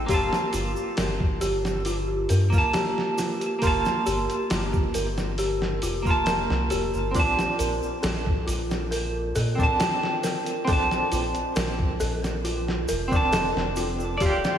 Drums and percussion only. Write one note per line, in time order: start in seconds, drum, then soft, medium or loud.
0.09 kick medium
0.09 open hi-hat medium
0.09 shaker soft
0.33 snare medium
0.33 shaker soft
0.53 open hi-hat medium
0.53 shaker medium
0.76 shaker soft
0.97 snare loud
0.97 open hi-hat medium
0.97 shaker soft
1.20 kick medium
1.41 open hi-hat medium
1.41 shaker medium
1.65 snare medium
1.65 shaker soft
1.85 open hi-hat medium
1.85 shaker soft
2.29 open hi-hat medium
2.29 shaker medium
2.52 kick medium
2.52 shaker soft
2.73 snare loud
2.73 open hi-hat medium
2.73 shaker soft
2.98 snare soft
3.18 snare soft
3.18 open hi-hat medium
3.18 shaker medium
3.41 closed hi-hat soft
3.41 shaker soft
3.62 kick medium
3.62 open hi-hat medium
3.62 shaker soft
3.85 snare soft
3.85 shaker soft
4.06 open hi-hat medium
4.06 shaker medium
4.30 closed hi-hat soft
4.30 shaker soft
4.50 snare loud
4.50 open hi-hat medium
4.50 shaker soft
4.73 kick medium
4.73 shaker soft
4.94 open hi-hat medium
4.94 shaker medium
5.18 snare soft
5.18 shaker soft
5.38 open hi-hat medium
5.38 shaker soft
5.62 snare soft
5.82 open hi-hat medium
5.82 shaker medium
6.05 kick medium
6.05 shaker soft
6.26 snare loud
6.26 open hi-hat medium
6.26 shaker soft
6.50 snare soft
6.70 open hi-hat medium
6.70 shaker medium
6.94 shaker soft
7.15 kick loud
7.15 open hi-hat medium
7.15 shaker soft
7.39 snare medium
7.39 shaker soft
7.59 open hi-hat medium
7.59 shaker medium
7.83 shaker soft
8.03 snare loud
8.03 open hi-hat medium
8.03 shaker medium
8.26 kick medium
8.48 open hi-hat medium
8.48 shaker medium
8.71 snare medium
8.71 shaker soft
8.92 open hi-hat medium
8.92 shaker medium
9.35 open hi-hat medium
9.35 shaker medium
9.58 kick medium
9.58 shaker soft
9.80 snare loud
9.80 open hi-hat medium
9.80 shaker soft
10.03 snare soft
10.23 snare soft
10.23 open hi-hat medium
10.23 shaker medium
10.46 closed hi-hat soft
10.46 shaker soft
10.67 kick loud
10.67 open hi-hat medium
10.67 shaker soft
10.91 snare soft
10.91 shaker soft
11.12 open hi-hat medium
11.12 shaker medium
11.35 closed hi-hat soft
11.35 shaker soft
11.56 snare loud
11.56 open hi-hat medium
11.56 shaker soft
11.79 kick medium
12.00 open hi-hat medium
12.00 shaker medium
12.24 snare soft
12.24 shaker soft
12.45 open hi-hat medium
12.45 shaker soft
12.68 snare soft
12.88 open hi-hat medium
12.88 shaker medium
13.11 kick loud
13.11 shaker soft
13.32 snare medium
13.32 open hi-hat medium
13.32 shaker soft
13.57 snare soft
13.76 open hi-hat medium
13.76 shaker medium
14.00 shaker soft
14.20 kick medium
14.20 open hi-hat medium
14.20 shaker soft
14.44 snare medium
14.44 shaker soft